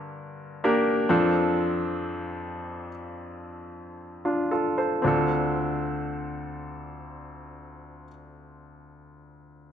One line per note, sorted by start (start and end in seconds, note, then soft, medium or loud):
0.00 1.06 G2 medium
0.00 1.06 D3 medium
0.64 1.07 A#3 medium
0.64 1.07 D4 medium
0.64 1.07 G4 medium
0.64 1.08 A#4 medium
1.09 5.00 F2 medium
1.09 5.00 F3 medium
1.09 2.88 C4 medium
1.09 2.89 D4 medium
1.09 2.89 F4 medium
1.09 2.89 A4 medium
4.25 4.50 D4 soft
4.25 4.50 F4 soft
4.51 4.77 F4 soft
4.51 4.76 A4 soft
4.78 5.06 A4 soft
4.78 5.29 C5 soft
5.02 8.07 D2 medium
5.02 8.04 C4 medium
5.02 8.06 D4 medium
5.02 8.08 F4 medium
5.08 8.10 A4 medium